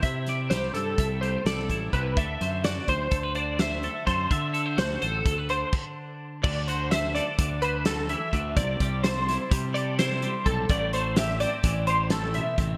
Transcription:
<<
  \new Staff \with { instrumentName = "Clean electric guitar" } { \time 9/8 \key d \mixolydian \tempo 4. = 84 e''4 c''8 a'4 c''8 a'4 b'8 | e''4 d''8 c''4 d''8 e''4 c''8 | e''4 c''8 a'4 c''8 r4. | d''8 c''8 e''8 d''4 b'8 a'8 e''4 |
d''4 c''4 r8 d''8 c''4 a'8 | d''8 c''8 e''8 d''4 c''8 a'8 e''4 | }
  \new Staff \with { instrumentName = "Clean electric guitar" } { \time 9/8 \key d \mixolydian << { e'8 d''4 a'8 e''8 a'8 d''8 e'8 e'8 | a'8 c''4 c''8 a'16 b'16 c''8 c''8 a'8 a'8 | a'8 a'16 c''8. c''8 a'16 b'16 c''8 r4. | r4 c''8 a'4 c''2 |
r4 a'8 e'4 a'8 e'4. | r4 g'8 c'4 g'2 | } \\ { c4 g4. g4. c8 | d4 fis'4. d4. d8 | d4 fis'4. d2 | d8 fis'4. d4 fis8 e8 d8 |
c8 g4. g4. g8 c8 | a,8 a4. e4 a,8 b,8 c8 | } >> }
  \new Staff \with { instrumentName = "Fingered electric bass" } { \clef bass \time 9/8 \key d \mixolydian c4 c,8 g,8 c,4 c,8 a,,8 c,8 | d,8 fis,4 d,8 d,2 fis,8 | d4 d,8 a,,8 d,4 r4. | d,2 d,2 d,8 |
c,8 c,4. c2 b,,8 | a,,2 a,,2 a,,8 | }
  \new DrumStaff \with { instrumentName = "Drums" } \drummode { \time 9/8 <hh bd>8 <hh sn>8 <hh sn>8 <hh sn>8 <hh bd>8 hh8 <hh sn>8 <hh bd>8 <hh bd>8 | <hh bd>8 <hh sn>8 <hh sn>8 <hh bd>8 <hh bd>8 hh8 <hh sn>8 hh8 <hh bd sn>8 | <hh bd>8 hh8 <hh sn>8 hh8 <hh bd>8 hh8 <cymc bd>4. | <cymc bd>8 hh8 <hh sn>8 <hh sn>8 <hh bd>8 hh8 <hh sn>8 hh8 <hh bd>8 |
<hh bd>8 <hh bd>8 <hh sn>8 <hh sn>8 <hh bd>8 hh8 <hh sn>8 hh8 <hh bd>8 | <hh bd>8 hh8 <hh sn>8 hh8 <hh bd>8 hh8 <hh sn>8 hh8 <hh bd>8 | }
>>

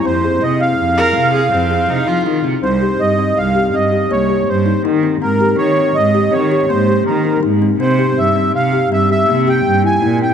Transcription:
<<
  \new Staff \with { instrumentName = "Accordion" } { \time 7/4 \key c \phrygian \tempo 4 = 162 c''4 ees''8 f''1~ f''8 r4 | c''4 ees''4 f''4 ees''4 des''4 c''4 r4 | bes'4 des''4 ees''4 des''4 c''4 bes'4 r4 | c''4 e''4 f''4 e''8 e''4 g''4 aes''4 g''8 | }
  \new Staff \with { instrumentName = "Viola" } { \time 7/4 \key c \phrygian r2 r8 bes'4 aes'8 c'4 ees'8 f'4~ f'16 r16 | r1. r4 | r1. r4 | r1. r4 | }
  \new Staff \with { instrumentName = "Kalimba" } { \time 7/4 \key c \phrygian c'8 aes'4 c'4 aes'8 c'8 aes'8 c'8 aes'4 ees'8 ees'8 c'8 | c'8 g'4 c'4 g'8 c'8 g'8 bes8 g'4 ees'8 ees'8 c'8 | c'8 g'4 c'4 g'8 c'8 g'8 bes8 g'4 ees'8 ees'8 c'8 | c'8 g'4 c'4 g'8 c'8 g'8 bes8 g'4 e'8 e'8 c'8 | }
  \new Staff \with { instrumentName = "Cello" } { \clef bass \time 7/4 \key c \phrygian f,4 c4 f,4 c4 f,4 c8 f8 ees8 c8 | c,4 g,4 c,4 g,4 c,4 g,4 ees4 | aes,4 ees4 aes,4 ees4 aes,4 ees4 aes,4 | c4 g,4 c4 g,4 c4 g,4 bes,4 | }
>>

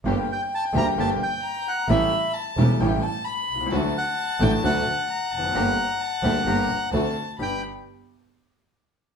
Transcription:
<<
  \new Staff \with { instrumentName = "Violin" } { \time 4/4 \key g \minor \tempo 4 = 131 g''2. bes''4 | b''4 a''4 g''8 a''8 b''4 | a''2. bes''8 a''8 | bes''4 a''4 bes''4 a''4 |
b''8 r2. r8 | }
  \new Staff \with { instrumentName = "Bandoneon" } { \time 4/4 \key g \minor r8 g''8 a''8 bes''8 a''8 g''4 fis''8 | e''4 r2. | r8 fis''4 g''8 fis''2~ | fis''2. r4 |
g''8 r2. r8 | }
  \new Staff \with { instrumentName = "String section" } { \time 4/4 \key g \minor <bes d' g'>8 r4 <bes d' g'>8 <bes d' g'>8 r4. | <a cis' g'>8 r4 <a cis' g'>8 <a cis' g'>8 r4. | <a d' fis'>8 r4 <a d' fis'>8 <a d' fis'>8 r4. | <bes d' g'>8 r4 <bes d' g'>8 <bes d' g'>8 r8 <c' d' fis'>8 r8 |
<b d' g'>8 r2. r8 | }
  \new Staff \with { instrumentName = "Upright piano" } { \clef bass \time 4/4 \key g \minor <g,, g, d g bes g'>8 r4 <d, d g bes g'>8 <g,, g, d g bes g'>8 r4. | <a,, a, cis g a e'>8 r4 <e,, e, cis g a e'>8 <a,, a, cis g a e'>8 r4 r32 b,,32 c,32 cis,32 | <d, d fis a fis'>8 r4 <a,, a, d fis a fis'>8 <d, d fis a fis'>8 r4 r32 e,32 f,32 fis,32 | <g,, g, d g bes g'>8 r4 <d, d g bes g'>8 <g,, g, d g bes g'>8 r8 <d, d a c' fis'>8 r8 |
<g, b d' g'>8 r2. r8 | }
  \new Staff \with { instrumentName = "Double bass" } { \clef bass \time 4/4 \key g \minor g,,8 r4 d,8 g,,8 r4. | a,,8 r4 e,,8 a,,8 r4 c,8 | d,8 r4 a,,8 d,8 r4 f,,8 | g,,8 r4 d,8 g,,8 r8 d,8 r8 |
g,,8 r2. r8 | }
>>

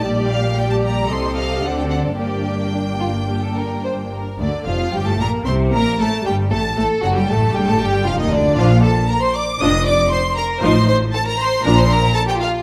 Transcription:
<<
  \new Staff \with { instrumentName = "Violin section" } { \time 4/4 \key g \minor \tempo 4 = 115 d''8 f''8 g''16 a''16 bes''8 c'''8 f''8 fis''16 g''16 fis''8 | g''2.~ g''8 r8 | d''8 f''8 g''16 a''16 bes''8 c'''8 bes''8 a''8 g''8 | a''8 a''8 fis''16 g''16 a''8 g''16 a''16 g''8 f''16 ees''16 d''8 |
f''8 a''8 bes''16 c'''16 d'''8 ees'''8 d'''8 c'''8 bes''8 | c'''8 c'''8 a''16 bes''16 c'''8 bes''16 c'''16 bes''8 a''16 g''16 f''8 | }
  \new Staff \with { instrumentName = "Violin section" } { \time 4/4 \key g \minor <g' d''>4 <g' d''>4 <a' ees''>4 <a' d''>4 | <g' d''>4 d'8 f'8 g'16 a'16 bes'8 c''8 bes'8 | d'8 f'8 g'16 a'16 bes'8 c''8 bes'8 a'8 g'8 | a'8 a'8 fis'16 g'16 a'8 g'16 a'16 g'8 f'16 ees'16 d'8 |
f'8 a'8 bes'16 c''16 d''8 ees''8 d''8 c''8 bes'8 | c''8 c''8 a'16 bes'16 c''8 bes'16 c''16 bes'8 a'16 g'16 f'8 | }
  \new Staff \with { instrumentName = "Viola section" } { \time 4/4 \key g \minor <g g'>4 <g g'>4 <c' g'>4 <c' d'>4 | <bes d'>2.~ <bes d'>8 r8 | d8 f8 g16 a16 bes8 c'8 bes8 a8 g8 | a8 a8 fis16 g16 a8 g16 a16 g8 f16 ees16 d8 |
<f d'>8 r4. <f d'>8 r4. | <f ees'>8 r4. <f d'>8 r4. | }
  \new Staff \with { instrumentName = "Cello section" } { \clef bass \time 4/4 \key g \minor bes,2 c4 d4 | g,2.~ g,8 r8 | d,8 f,8 g,16 a,16 bes,8 c8 bes,8 a,8 g,8 | a,8 a,8 fis,16 g,16 a,8 g,16 a,16 g,8 f,16 ees,16 d,8 |
bes,4 r4 f,4 r4 | a,4 r4 bes,4 r4 | }
  \new Staff \with { instrumentName = "Double bass section" } { \clef bass \time 4/4 \key g \minor bes,,2 c,4 d,4 | g,,2.~ g,,8 r8 | d,8 f,,8 g,,16 r16 bes,,8 c,8 bes,,8 a,,8 g,,8 | a,,8 a,,8 fis,,16 r16 a,,8 g,,16 r16 g,,8 f,,16 r16 d,8 |
bes,,4 r4 f,,4 r4 | a,,4 r4 bes,,4 r4 | }
>>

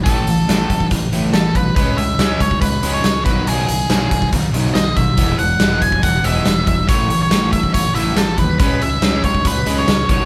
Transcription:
<<
  \new Staff \with { instrumentName = "Lead electric guitar" } { \time 4/4 \key cis \minor \tempo 4 = 140 a'2 r4 a'8 b'8 | b'8 e''4 cis''8 b'8. cis''8. b'8 | gis'2 r4 dis''8 e''8~ | e''8 fis''4 gis''8 fis''8 e''4 e''8 |
cis''8. cis''8. e''8 cis''8 e''8 a'8 b'8 | b'8 e''4 cis''8 b'8. cis''8. cis''8 | }
  \new Staff \with { instrumentName = "Overdriven electric guitar" } { \clef bass \time 4/4 \key cis \minor <a, e a>8 <a, e>8 <a, e a>8 <a, e>8 <a, e>8 <a, e a>8 <a, e>8 <a, e>8 | <cis gis cis'>8 <cis gis>8 <cis gis cis'>8 <cis gis>8 <cis gis>8 <cis gis cis'>8 <cis gis>8 <b, dis fis>8 | <b, dis fis>8 <b, dis>8 <b, dis fis>8 <b, dis>8 <b, dis>8 <b, dis fis>8 <b, dis>8 <b, dis>8 | <e gis b>8 <e gis>8 <e gis b>8 <e gis>8 <e gis>8 <e gis b>8 <e gis>8 <e gis>8 |
<a, e a>8 <a, e>8 <a, e a>8 <a, e>8 <a, e>8 <a, e a>8 <a, e>8 <a, e>8 | <cis gis cis'>8 <cis gis>8 <cis gis cis'>8 <cis gis>8 <cis gis>8 <cis gis cis'>8 <cis gis>8 <b, dis fis>8 | }
  \new Staff \with { instrumentName = "Fingered electric bass" } { \clef bass \time 4/4 \key cis \minor a,,8 a,,8 a,,8 a,,8 a,,8 a,,8 a,,8 b,,8 | cis,8 cis,8 cis,8 cis,8 cis,8 cis,8 cis,8 b,,8 | b,,8 b,,8 b,,8 b,,8 b,,8 b,,8 b,,8 b,,8 | e,,8 e,,8 e,,8 e,,8 e,,8 e,,8 e,,8 e,,8 |
a,,8 a,,8 a,,8 a,,8 a,,8 a,,8 a,,8 dis,8 | cis,8 cis,8 cis,8 cis,8 cis,8 cis,8 cis,8 b,,8 | }
  \new DrumStaff \with { instrumentName = "Drums" } \drummode { \time 4/4 <hh bd>8 hh8 <hh sn>8 <hh bd>16 bd16 <hh bd>8 hh8 <hh sn>8 <hh bd>8 | <hh bd>8 hh8 <hh sn>8 <hh bd>16 bd16 <hh bd>8 hh8 <hh sn>8 <hh bd>8 | hh8 hh8 <hh sn>8 <hh bd>16 bd16 <hh bd>8 hh8 <hh sn>8 <hh bd>8 | <hh bd>8 hh8 <hh sn>8 <hh bd>16 bd16 <hh bd>8 hh8 <hh sn>8 <hh bd>8 |
<hh bd>8 hh8 <hh sn>8 <hh bd>16 bd16 <hh bd>8 hh8 <hh sn>8 <hh bd>8 | <hh bd>8 hh8 <hh sn>8 <hh bd>16 bd16 <hh bd>8 hh8 <hh sn>8 <hh bd>8 | }
>>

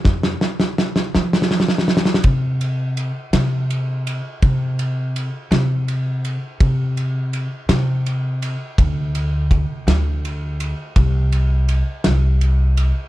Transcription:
<<
  \new Staff \with { instrumentName = "Upright bass" } { \clef bass \time 6/8 \key c \mixolydian \tempo 4. = 55 f,8 r4 f4. | c4. c4. | c4. c4. | c4. c4. |
d,4. d,4. | c,4. c,4. | }
  \new DrumStaff \with { instrumentName = "Drums" } \drummode { \time 6/8 <bd sn>16 sn16 sn16 sn16 sn16 sn16 sn16 sn32 sn32 sn32 sn32 sn32 sn32 sn32 sn32 sn32 sn32 | <bd cymr>8 cymr8 cymr8 <cymr sn>8 cymr8 cymr8 | <bd cymr>8 cymr8 cymr8 <cymr sn>8 cymr8 cymr8 | <bd cymr>8 cymr8 cymr8 <cymr sn>8 cymr8 cymr8 |
<bd cymr>8 cymr8 <bd cymr>8 <cymr sn>8 cymr8 cymr8 | <bd cymr>8 cymr8 cymr8 <cymr sn>8 cymr8 cymr8 | }
>>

